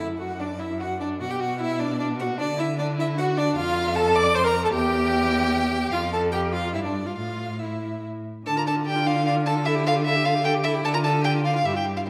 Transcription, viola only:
0.00 0.19 E4 medium
0.20 0.28 F#4 medium
0.41 0.49 D4 medium
0.61 0.83 E4 medium
0.81 1.00 F#4 medium
1.00 1.20 D4 medium
1.21 1.25 F#4 medium
1.30 1.42 G4 medium
1.40 1.62 F#4 medium
1.60 1.82 E4 medium
1.80 1.99 D4 medium
2.00 2.08 D4 medium
2.21 2.28 F#4 medium
2.40 2.48 D4 medium
2.59 2.67 E4 medium
2.79 2.87 D4 medium
2.98 3.06 E4 medium
3.17 3.39 F#4 loud
3.38 3.57 D4 loud
3.57 3.95 F4 loud
3.96 4.17 A4 loud
4.15 4.36 D5 loud
4.35 4.46 C5 loud
4.44 4.63 A#4 loud
4.64 4.72 A4 loud
4.73 5.90 G4 loud
5.93 6.01 F4 medium
6.12 6.32 A4 loud
6.33 6.54 G4 medium
6.53 6.75 F4 medium
6.73 6.83 E4 loud
6.84 7.08 D4 medium
7.06 7.16 F4 medium
7.17 7.59 F4 medium
7.60 8.03 E4 medium
8.46 8.57 D4 medium
8.56 8.67 F4 medium
8.66 8.77 D4 medium
8.76 8.85 F4 medium
8.86 8.97 D4 medium
8.96 9.08 F4 medium
9.06 9.18 D4 medium
9.16 9.25 F4 medium
9.26 9.38 D4 medium
9.36 9.47 F4 medium
9.46 9.57 D4 medium
9.56 9.65 F4 medium
9.66 9.77 A4 medium
9.75 9.86 G4 medium
9.85 9.97 A4 medium
9.95 10.04 G4 medium
10.05 10.17 A4 medium
10.16 10.27 G4 medium
10.25 10.36 A4 medium
10.35 10.44 G4 medium
10.45 10.57 A4 loud
10.55 10.66 G4 medium
10.65 10.76 A4 medium
10.74 10.83 G4 medium
10.84 10.96 D4 medium
10.94 11.06 F4 medium
11.04 11.15 D4 medium
11.14 11.23 F4 medium
11.24 11.36 D4 medium
11.34 11.46 F4 medium
11.45 11.57 D4 medium
11.55 11.65 F4 medium
11.66 11.77 G4 medium
11.75 11.88 E4 medium
11.86 11.98 G4 medium
11.97 12.07 E4 medium

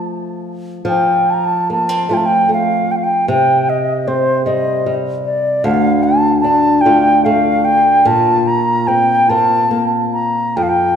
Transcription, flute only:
0.88 1.32 G5 medium
1.30 1.36 A5 medium
1.30 1.46 A#5 medium
1.45 1.70 A5 medium
1.72 2.15 A5 medium
2.13 2.19 G5 medium
2.13 2.27 A5 medium
2.25 2.51 G5 medium
2.53 2.93 F5 medium
2.91 2.97 G5 medium
2.96 3.05 F5 medium
3.04 3.28 G5 medium
3.29 3.71 G5 medium
3.69 4.09 D#5 medium
4.08 4.45 C5 medium
4.46 4.96 D#5 medium
5.25 5.66 D5 medium
5.65 6.05 F5 medium
6.03 6.40 A5 medium
6.41 6.82 A5 medium
6.81 7.26 G5 medium
7.25 7.66 F5 medium
7.64 8.08 G5 medium
8.07 8.49 A5 medium
8.47 8.89 A#5 medium
8.87 9.31 G5 medium
9.29 9.85 A5 medium
10.13 10.58 A#5 medium
10.56 10.64 G5 medium
10.63 10.70 F5 medium
10.69 10.96 G5 medium

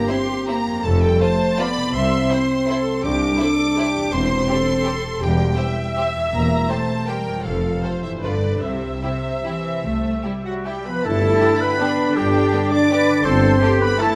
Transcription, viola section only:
0.00 0.85 G4 medium
0.84 1.20 A4 medium
1.21 1.59 C5 medium
1.59 1.95 D5 medium
1.94 2.31 E5 medium
2.31 2.69 C5 medium
2.69 3.04 A4 medium
3.04 3.40 G4 medium
3.41 3.78 A4 medium
3.78 4.13 G4 medium
4.13 4.49 C5 medium
4.50 5.21 A4 medium
5.22 5.59 G4 medium
5.59 6.70 E5 medium
6.70 7.09 C5 medium
7.09 7.46 A#4 medium
7.45 7.83 A4 medium
7.84 8.24 C5 medium
8.24 8.63 B4 medium
8.62 10.85 E5 medium
11.42 11.50 D3 medium
11.42 11.50 B3 medium
11.80 11.89 D3 medium
11.80 11.88 B3 medium
12.53 12.62 D3 medium
12.53 12.61 B3 medium
12.90 12.98 D3 medium
12.90 12.98 B3 medium
13.61 13.70 E3 medium
13.61 13.69 A3 medium
14.00 14.08 E3 medium
14.00 14.08 A3 medium

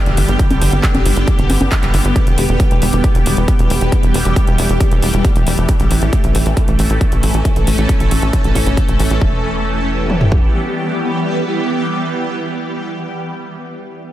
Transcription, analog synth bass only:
0.06 0.15 G1 medium
0.17 0.26 G1 loud
0.28 0.37 G1 medium
0.50 0.59 G1 medium
0.61 0.70 G1 loud
0.72 0.81 G1 medium
0.94 1.03 G1 medium
1.05 1.14 G1 loud
1.16 1.25 G1 medium
1.39 1.47 G1 medium
1.50 1.58 G1 loud
1.61 1.70 G1 medium
1.83 1.92 G1 medium
1.94 2.03 G1 loud
2.05 2.14 G1 medium
2.27 2.36 E1 medium
2.38 2.47 E1 loud
2.49 2.58 E1 medium
2.71 2.80 E1 medium
2.82 2.91 E1 loud
2.93 3.02 E1 medium
3.15 3.24 E1 medium
3.26 3.35 E1 loud
3.37 3.46 E1 medium
3.59 3.68 E1 medium
3.70 3.79 E1 loud
3.81 3.90 E1 medium
4.03 4.12 E1 medium
4.14 4.23 E1 loud
4.25 4.34 E1 medium
4.47 4.56 E1 medium
4.58 4.67 E1 loud
4.69 4.78 E1 medium
4.91 5.00 E1 medium
5.03 5.11 E1 loud
5.14 5.22 E1 medium
5.36 5.45 E1 medium
5.47 5.56 E1 loud
5.58 5.67 E1 medium
5.80 5.89 A1 medium
5.91 6.00 A1 loud
6.02 6.11 A1 medium
6.24 6.33 A1 medium
6.35 6.44 A1 loud
6.46 6.55 A1 medium
6.68 6.77 A1 medium
6.79 6.88 A1 loud
6.90 6.99 A1 medium
7.12 7.21 A1 medium
7.23 7.32 A1 loud
7.34 7.43 A1 medium
7.56 7.65 A1 medium
7.67 7.76 A1 loud
7.78 7.87 A1 medium
8.00 8.09 A1 medium
8.11 8.20 A1 loud
8.22 8.31 A1 medium
8.44 8.53 A1 medium
8.55 8.64 A1 loud
8.66 8.75 A1 medium
8.88 8.97 A1 medium
8.99 9.08 A1 loud
9.10 9.19 A1 medium
9.21 10.50 E1 medium

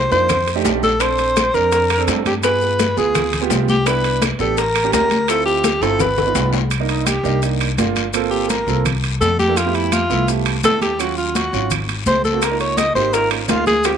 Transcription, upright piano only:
0.11 0.29 A#3 medium
0.11 0.29 D4 medium
0.11 0.29 D#4 medium
0.11 0.30 F4 medium
0.55 0.87 A3 medium
0.55 0.87 D4 medium
0.55 0.87 D#4 medium
0.55 0.87 G4 loud
1.00 1.38 C4 medium
1.00 1.38 D4 medium
1.00 1.38 A4 medium
1.53 1.85 C4 medium
1.53 1.85 D4 medium
1.53 1.85 A#4 medium
1.98 2.29 C4 medium
1.98 2.30 D4 medium
1.98 2.30 A4 loud
2.43 2.81 B3 medium
2.43 2.81 F4 medium
2.43 2.81 G#4 medium
2.96 3.28 B3 medium
2.96 3.28 F4 medium
2.96 3.28 G#4 medium
3.41 3.73 B3 loud
3.41 3.73 F4 medium
3.41 3.73 G4 loud
3.86 4.23 B3 medium
3.86 4.24 D4 medium
3.86 4.24 E4 medium
4.39 4.57 B3 medium
4.39 4.58 D4 medium
4.39 4.58 G4 medium
4.84 5.15 A#3 medium
4.84 5.15 C#4 medium
4.84 5.16 G4 medium
5.28 5.66 C4 medium
5.28 5.66 E4 medium
5.28 5.66 F4 medium
5.82 6.00 C4 medium
5.82 6.00 E4 medium
5.82 6.00 F4 medium
6.26 6.58 B3 medium
6.26 6.58 D#4 medium
6.26 6.58 F4 medium
6.80 7.11 A#3 medium
6.80 7.11 D4 medium
6.80 7.12 D#4 medium
7.24 7.37 A#3 medium
7.24 7.37 D4 medium
7.24 7.38 D#4 medium
7.42 7.67 A#3 medium
7.42 7.68 D4 medium
7.42 7.68 D#4 medium
7.78 8.03 A#3 medium
7.78 8.04 D4 medium
7.78 8.04 F4 loud
8.14 8.51 A#3 loud
8.14 8.52 C4 medium
8.14 8.52 F4 medium
8.14 8.52 A4 loud
8.67 8.85 A#3 medium
8.67 8.85 C4 medium
8.67 8.86 F4 medium
8.67 8.86 A4 medium
9.48 9.57 A#3 medium
9.48 9.57 D4 medium
9.48 9.57 E4 medium
9.48 9.58 A4 loud
9.66 9.97 A3 medium
9.66 9.97 B3 medium
9.66 9.98 E4 medium
9.66 9.98 G4 medium
10.10 10.23 A3 medium
10.10 10.23 B3 medium
10.10 10.23 E4 medium
10.10 10.23 A4 medium
10.28 10.53 A3 medium
10.28 10.53 B3 medium
10.28 10.53 E4 medium
10.28 10.54 G4 medium
10.63 10.89 A3 medium
10.63 10.89 B3 medium
10.63 10.89 E4 medium
10.63 10.89 A4 medium
10.99 11.37 F#3 medium
10.99 11.37 C#4 medium
10.99 11.37 F4 medium
11.53 11.71 F#3 medium
11.53 11.71 C#4 medium
11.53 11.71 F4 medium
12.32 12.42 A#3 medium
12.32 12.42 C4 medium
12.32 12.42 F#4 medium
12.50 12.82 A#3 medium
12.50 12.82 D#4 medium
12.50 12.83 F4 medium
12.95 13.08 A#3 medium
12.95 13.08 D#4 medium
12.95 13.09 G4 medium
13.13 13.39 A#3 medium
13.13 13.39 D#4 medium
13.13 13.39 F4 medium
13.48 13.74 A#3 medium
13.48 13.74 D#4 medium
13.48 13.74 F4 medium
13.85 13.97 G#3 medium
13.85 13.97 C4 medium
13.85 13.97 F4 medium

